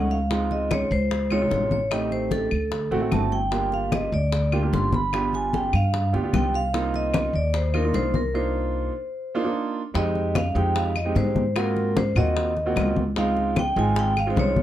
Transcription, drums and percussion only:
0.11 high bongo
0.31 high bongo, high conga
0.51 high bongo, high conga
0.71 high bongo, high conga, claves
0.91 high conga
1.11 high bongo, high conga
1.30 high bongo, high conga, claves
1.51 high bongo, low bongo, high conga
1.71 high bongo, high conga
1.91 high bongo, high conga, claves
2.11 high bongo, high conga
2.31 high bongo, high conga
2.51 claves
2.72 high bongo, high conga
2.92 high bongo, high conga
3.12 high bongo, low bongo, high conga, claves
3.32 high bongo
3.52 high bongo, high conga
3.72 high bongo, high conga
3.92 high bongo, high conga, claves
4.12 high conga
4.32 high bongo, high conga
4.52 high bongo, high conga, claves
4.73 high bongo, low bongo, high conga
4.93 high bongo, high conga
5.13 high bongo, high conga, claves
5.33 high bongo, high conga
5.53 high bongo, high conga
5.73 claves
5.93 high bongo, high conga
6.14 high bongo, high conga
6.33 high bongo, low bongo, high conga, claves
6.54 high bongo
6.74 high bongo, high conga
6.94 high bongo, high conga
7.14 high bongo, high conga, claves
7.34 high conga
7.54 high bongo, high conga
7.74 high bongo, high conga, claves
7.94 high bongo, low bongo, high conga
8.14 high bongo, high conga
9.95 high bongo, high conga
10.15 high bongo, high conga
10.35 high bongo, high conga, claves
10.55 high bongo, high conga
10.76 high bongo, high conga
10.96 high bongo, high conga, claves
11.16 high bongo, low bongo, high conga
11.36 high conga
11.56 high bongo, high conga, claves
11.76 high bongo, high conga
11.97 high bongo, high conga
12.16 high bongo, high conga, low conga, claves
12.37 high bongo, high conga
12.57 high bongo, high conga
12.77 high bongo, low bongo, high conga, claves
12.96 high conga
13.16 high bongo, high conga
13.37 high bongo, high conga
13.56 high bongo, high conga, claves
13.76 high bongo, high conga
13.96 high bongo, high conga
14.17 high bongo, high conga, claves
14.37 high bongo, low bongo, high conga
14.56 high conga

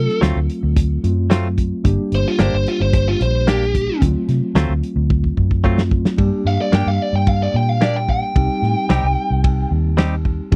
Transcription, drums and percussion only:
0.09 snare
0.22 snare, closed hi-hat
0.50 closed hi-hat
0.77 kick, closed hi-hat
1.04 closed hi-hat
1.31 snare, closed hi-hat
1.58 kick, closed hi-hat
1.85 kick, closed hi-hat
2.12 closed hi-hat
2.26 snare
2.39 snare, closed hi-hat
2.67 closed hi-hat
2.93 kick, closed hi-hat
3.21 closed hi-hat
3.47 snare, closed hi-hat
3.62 snare
3.75 kick, closed hi-hat
4.02 kick, closed hi-hat
4.29 snare, closed hi-hat
4.56 snare, closed hi-hat
4.83 closed hi-hat
5.10 kick
5.24 kick
5.37 kick
5.51 kick
5.64 kick
5.78 snare
5.91 kick
6.05 snare
6.18 kick, ride bell
6.46 snare
6.73 snare, ride bell
7.27 kick, ride bell
7.81 snare, ride bell
8.09 kick
8.36 kick, ride bell
8.63 snare
8.90 snare, ride bell
9.44 kick, ride bell
9.98 snare, ride bell
10.25 kick
10.52 kick, ride bell

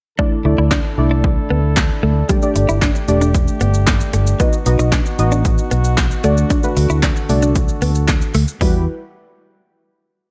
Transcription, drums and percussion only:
0.19 kick
0.71 kick, snare, clap
1.24 kick
1.76 kick, snare, clap
2.29 kick, closed hi-hat, shaker
2.42 shaker
2.56 closed hi-hat, shaker
2.69 shaker
2.82 kick, snare, clap, closed hi-hat, shaker
2.95 shaker
3.08 closed hi-hat, shaker
3.21 shaker
3.35 kick, closed hi-hat, shaker
3.48 shaker
3.61 closed hi-hat, shaker
3.74 shaker
3.87 kick, snare, clap, closed hi-hat, shaker
4.01 shaker
4.13 closed hi-hat, shaker
4.27 shaker
4.40 kick, closed hi-hat, shaker
4.53 shaker
4.66 closed hi-hat, shaker
4.79 shaker
4.92 kick, snare, clap, closed hi-hat, shaker
5.06 shaker
5.19 closed hi-hat, shaker
5.32 shaker
5.45 kick, closed hi-hat, shaker
5.58 shaker
5.71 closed hi-hat, shaker
5.84 shaker
5.97 kick, snare, clap, closed hi-hat, shaker
6.11 shaker
6.24 closed hi-hat, shaker
6.37 shaker
6.50 kick, closed hi-hat, shaker
6.63 shaker
6.77 open hi-hat, shaker
6.90 shaker
7.03 kick, snare, clap, closed hi-hat, shaker
7.16 shaker
7.29 open hi-hat, shaker
7.42 shaker
7.56 kick, closed hi-hat, shaker
7.69 shaker
7.82 open hi-hat, shaker
7.95 shaker
8.08 kick, snare, clap, closed hi-hat, shaker
8.22 shaker
8.34 open hi-hat, shaker
8.48 shaker
8.61 kick, open hi-hat

